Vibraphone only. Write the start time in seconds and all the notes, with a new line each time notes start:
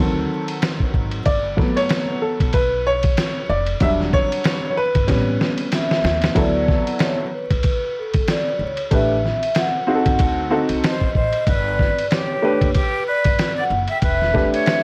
5.74 E5
6.39 D5
7.02 C#5
7.27 C#5
7.34 B4
7.99 A4
8.30 D5
8.63 C#5
8.95 E5
9.59 F#5
10.86 D#5
11.17 D#5
12.13 C#5
12.76 B4
13.09 D5
13.60 F#5
13.91 G5
14.05 E5
14.55 E5